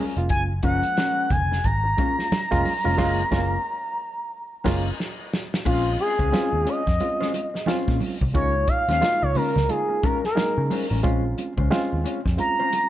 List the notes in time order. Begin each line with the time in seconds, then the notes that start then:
Already playing: G#3 C#4 F4 A#4
0.16 F1 G#3 A#3 C#4 F4, muted clean electric guitar stroke, closed hi-hat
0.29 F#1 G#5, kick, closed hi-hat, muted conga
0.63 F#1 F3 G#3 A#3 C#4 F4 A#4 F#5, kick, closed hi-hat, muted conga
0.83 closed hi-hat
0.97 G#3 C#4 A#4, snare, closed hi-hat, high conga
1.31 F1 G#5, kick, closed hi-hat, low conga
1.51 muted clean electric guitar stroke, snare
1.64 G#1 A#5, kick, closed hi-hat, muted conga
1.84 muted clean electric guitar stroke
1.97 G#3 A#3 C#4 F4 A#4, kick, closed hi-hat, muted conga
2.19 muted clean electric guitar stroke, snare
2.32 muted picked electric bass stroke, muted clean electric guitar stroke, snare, closed hi-hat, high conga
2.51 F1 G#3 A#3 C#4 F4, muted clean electric guitar stroke, kick, snare
2.65 open hi-hat, high conga
2.84 F1 G#3 A3 C#4 F4 A#4
2.91 A#3
2.98 F#1 G#3 C#4 F4 A#4, kick, snare, crash
3.05 A#3
3.31 F#1 G#3 C#4 F4 A#4, kick, snare
3.38 A#3
4.64 F#1 G#3 A#3 C#4 F4 A#4, kick, snare, crash
5.00 snare
5.33 snare
5.54 snare
5.65 A#1 G#3 C4 C#4 F4 C5, kick, crash, muted conga
5.99 G#4, muted clean electric guitar stroke, closed hi-hat, muted conga
6.19 C#2 G#3 C#4 F4 C5, kick, closed hi-hat
6.32 G#3 C4 C#4 F4 C5, snare, closed hi-hat, high conga
6.52 D#2, muted clean electric guitar stroke
6.65 G#3 C#4 F4 C#5 D#5, closed hi-hat
6.86 F2, muted clean electric guitar stroke, kick, snare
7.00 G#3 C4 C#4 F4, muted clean electric guitar stroke, closed hi-hat, muted conga
7.20 G#3 C#4 F4 C5, snare
7.34 muted clean electric guitar stroke, closed hi-hat, muted conga
7.54 muted clean electric guitar stroke, snare
7.66 G#3 C4 C#4 F4 C5, snare, closed hi-hat, high conga
7.88 A#2, kick, snare
8.00 muted clean electric guitar stroke, open hi-hat, high conga
8.21 C2, muted clean electric guitar stroke, kick
8.34 C#2 G#3 A#3 C#4 D#4 F4 A#4 C#5, kick, closed hi-hat, muted conga
8.55 muted clean electric guitar stroke
8.68 F5, muted clean electric guitar stroke, kick, closed hi-hat
8.89 D#2 G#3 C#4 F4 C5 F5, snare, closed hi-hat
9.01 G#3 A#3 D#4 F4, snare, closed hi-hat, high conga
9.22 C#2 C#5, muted clean electric guitar stroke
9.35 G#3 C#4 F4 A#4, open hi-hat, low conga
9.55 C#2, muted clean electric guitar stroke, snare, low conga
9.69 G#3 A#3 D#4 F4 G#4, muted clean electric guitar stroke, closed hi-hat, muted conga
9.89 muted clean electric guitar stroke
10.03 G#3 C#4 F4 A#4, kick, closed hi-hat, muted conga
10.24 A#4, muted clean electric guitar stroke, snare
10.35 G#3 A#3 D#4 G#4, muted clean electric guitar stroke, snare, closed hi-hat, high conga
10.57 C#3, muted clean electric guitar stroke
10.70 G#3 C#4 F4 C5, open hi-hat, high conga
10.90 A1 G#3 C#4 F4 A#4
11.03 A#1 G#3 C4 C#4 F4 C5, kick, closed hi-hat, muted conga
11.38 muted clean electric guitar stroke, closed hi-hat, muted conga
11.57 C#2 G#3 C#4 F4 C5, kick
11.71 G#3 C4 C#4 F4 C5, snare, closed hi-hat, high conga
11.91 D#2, muted clean electric guitar stroke
12.04 G#3 C#4 F4 C#5, closed hi-hat
12.25 F2, muted clean electric guitar stroke, kick, snare
12.37 G#3 C4 C#4 F4 A#5, muted clean electric guitar stroke, closed hi-hat, muted conga
12.59 G#3 C#4 F4 C5
12.72 muted clean electric guitar stroke, closed hi-hat, muted conga